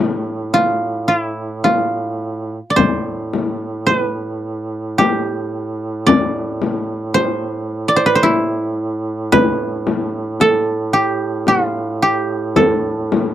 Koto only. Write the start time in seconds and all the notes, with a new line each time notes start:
Already playing: G4 A4
0.54 F4
1.08 F4
1.19 E4
1.64 F4
2.70 D5
2.76 C5
3.87 C5
3.98 B4
4.98 G4
6.07 D5
7.14 C5
7.88 D5
7.96 C5
8.06 B4
8.15 C5
8.23 E4
9.32 B4
10.41 A4
10.93 G4
11.48 F4
12.02 G4
12.56 A4